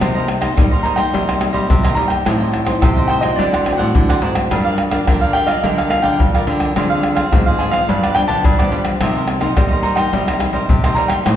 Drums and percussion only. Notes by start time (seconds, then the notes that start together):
0.01 pandeiro, tamborim, shaker, surdo
0.16 pandeiro, shaker
0.28 pandeiro, tamborim, shaker
0.42 pandeiro, tamborim, shaker, surdo
0.58 pandeiro, tamborim, shaker, surdo
0.73 pandeiro, shaker
0.85 pandeiro, shaker
0.98 pandeiro, tamborim, shaker
1.14 pandeiro, shaker, surdo
1.29 pandeiro, tamborim, shaker, surdo
1.41 pandeiro, tamborim
1.54 pandeiro, shaker, surdo
1.70 pandeiro, shaker, surdo
1.85 pandeiro, tamborim, shaker
1.97 pandeiro
2.10 pandeiro, tamborim, shaker, surdo
2.26 pandeiro, tamborim, shaker, surdo
2.41 pandeiro, shaker
2.54 pandeiro, tamborim, shaker
2.67 pandeiro, tamborim, shaker, surdo
2.82 pandeiro, tamborim, shaker, surdo
2.97 pandeiro, shaker
3.10 pandeiro, shaker
3.23 pandeiro, tamborim, shaker
3.39 pandeiro, shaker, surdo
3.54 pandeiro, tamborim, shaker, surdo
3.66 pandeiro, tamborim, surdo
3.79 pandeiro, shaker, surdo
3.95 pandeiro, shaker, surdo
4.10 pandeiro, tamborim, shaker
4.22 pandeiro
4.35 pandeiro, tamborim, shaker, surdo
4.51 pandeiro, tamborim, shaker, surdo
4.66 pandeiro, shaker
4.78 pandeiro, tamborim
4.91 pandeiro, tamborim, shaker, surdo
5.07 pandeiro, tamborim, shaker, surdo
5.22 pandeiro, shaker
5.35 pandeiro
5.48 pandeiro, tamborim, shaker
5.64 pandeiro, shaker, surdo
5.78 pandeiro, tamborim, shaker, surdo
5.91 pandeiro, tamborim
6.04 pandeiro, shaker, surdo
6.20 pandeiro, shaker, surdo
6.35 pandeiro, tamborim, shaker
6.47 pandeiro
6.60 pandeiro, tamborim, shaker, surdo
6.76 pandeiro, tamborim, shaker, surdo
6.91 pandeiro, shaker
7.03 pandeiro, tamborim
7.17 pandeiro, tamborim, shaker, surdo
7.32 pandeiro, tamborim, shaker, surdo
7.48 pandeiro, shaker
7.60 pandeiro, shaker
7.73 pandeiro, tamborim, shaker
7.89 pandeiro, shaker, surdo
8.04 pandeiro, tamborim, shaker, surdo
8.16 pandeiro, tamborim, shaker
8.29 pandeiro, shaker, surdo
8.44 pandeiro, shaker, surdo
8.59 pandeiro, tamborim, shaker
8.72 pandeiro, shaker
8.85 pandeiro, tamborim, shaker, surdo
9.01 pandeiro, tamborim, shaker, surdo
9.16 pandeiro, shaker
9.28 pandeiro, tamborim
9.41 pandeiro, tamborim, shaker, surdo
9.57 pandeiro, tamborim, shaker, surdo
9.71 pandeiro, shaker
9.83 pandeiro
9.97 pandeiro, tamborim, shaker
10.13 pandeiro, shaker, surdo
10.28 pandeiro, tamborim, shaker, surdo
10.40 pandeiro, tamborim, shaker, surdo
10.53 pandeiro, shaker, surdo
10.69 pandeiro, shaker, surdo
10.84 pandeiro, tamborim, shaker
10.96 pandeiro
11.10 pandeiro, tamborim, shaker, surdo
11.26 pandeiro, tamborim, shaker, surdo